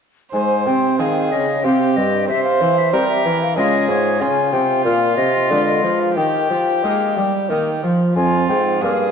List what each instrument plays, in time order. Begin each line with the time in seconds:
0.33 bassoon G#2, harpsichord G#2, violin C5, flute G#5
0.66 harpsichord C3, bassoon C3, flute G5
0.99 harpsichord D#3 C4 G#4 D#5, bassoon D#3, violin G#4, flute F5
1.32 bassoon C#3, harpsichord C#3, flute D#5
1.64 bassoon C3, harpsichord C3 C4 G4 C5, violin G4, flute F5
1.96 harpsichord G2, bassoon G2, flute D#5
2.29 harpsichord C3, bassoon C3, violin C5, flute E5
2.44 flute F5
2.61 harpsichord E3, bassoon E3
2.78 flute E5
2.93 bassoon G3, harpsichord G3 C4 G4 A#4, violin A#4, flute C5
3.08 flute E5
3.25 bassoon E3, harpsichord E3
3.42 flute F5
3.57 harpsichord C#3 G#3 F4 G#4, bassoon C#3, violin G#4, flute D#5
3.88 bassoon G#2, harpsichord G#2, flute C#5
4.20 bassoon C#3, harpsichord C#3, violin F4, flute G#5
4.52 bassoon C3, harpsichord C3, flute G5
4.84 bassoon A#2, harpsichord A#2 F4 A#4, flute F5
5.17 bassoon C3, harpsichord C3, flute D#5
5.50 bassoon D3, harpsichord D3 G#3 F4 B4, flute D5
5.66 flute D#5
5.83 bassoon F3, harpsichord F3
6.00 flute F5
6.16 harpsichord D#3, bassoon D#3, violin G4, flute G5
6.50 bassoon F3, harpsichord F3
6.83 bassoon G#3, harpsichord G#3 A#3 D#4 A#4
7.17 bassoon G3, harpsichord G3
7.49 bassoon D#3, harpsichord D#3 A#3 D#4 A#4
7.83 bassoon F3, harpsichord F3
8.16 bassoon F2, harpsichord F2, violin F4, flute G#5
8.48 bassoon G#2, harpsichord G#2, flute G5
8.81 bassoon G2, harpsichord G2 A#3 D4 A#4, violin G#4, flute F5